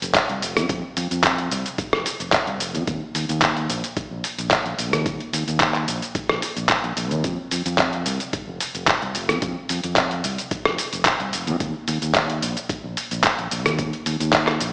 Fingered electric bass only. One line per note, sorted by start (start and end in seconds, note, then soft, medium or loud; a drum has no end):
0.02 0.13 F1 medium
0.29 0.40 C2 medium
0.42 0.58 F1 medium
0.56 0.67 F2 medium
0.69 0.81 F2 loud
0.97 1.09 F2 medium
1.11 1.48 F2 medium
1.51 1.63 C2 loud
1.93 2.04 F1 medium
2.20 2.31 F1 medium
2.47 2.58 C2 medium
2.60 2.76 F1 medium
2.74 2.85 F2 medium
2.87 3.00 D#2 loud
3.15 3.27 D#2 medium
3.29 3.66 D#2 medium
3.69 3.81 A#1 loud
4.11 4.22 A#1 medium
4.38 4.49 A#1 medium
4.66 4.76 A#1 medium
4.79 4.93 A#1 medium
4.93 5.04 D#2 medium
5.06 5.18 D#2 loud
5.33 5.45 D#2 medium
5.47 5.84 D#2 medium
5.88 6.00 A#1 loud
6.29 6.40 A#1 medium
6.57 6.67 A#1 medium
6.84 6.95 A#1 medium
6.97 7.11 A#1 medium
7.11 7.22 D#2 medium
7.24 7.36 F2 loud
7.51 7.63 F2 medium
7.66 8.03 F2 medium
8.06 8.18 C2 loud
8.47 8.58 F1 medium
8.75 8.86 F1 medium
9.02 9.13 C2 medium
9.15 9.31 F1 medium
9.30 9.40 F2 medium
9.42 9.54 F2 loud
9.70 9.82 F2 medium
9.84 10.21 F2 medium
10.24 10.36 C2 loud
10.66 10.77 F1 medium
10.93 11.04 F1 medium
11.20 11.31 C2 medium
11.33 11.49 F1 medium
11.48 11.58 F2 medium
11.60 11.72 D#2 loud
11.88 12.00 D#2 medium
12.02 12.39 D#2 medium
12.42 12.54 A#1 loud
12.69 muted fingered electric bass stroke soft
12.84 12.95 A#1 medium
13.11 13.22 A#1 medium
13.39 13.49 A#1 medium
13.52 13.66 A#1 loud
13.66 13.77 D#2 medium
13.79 13.91 D#2 loud
14.06 14.18 D#2 medium
14.20 14.57 D#2 medium
14.60 14.72 A#1 loud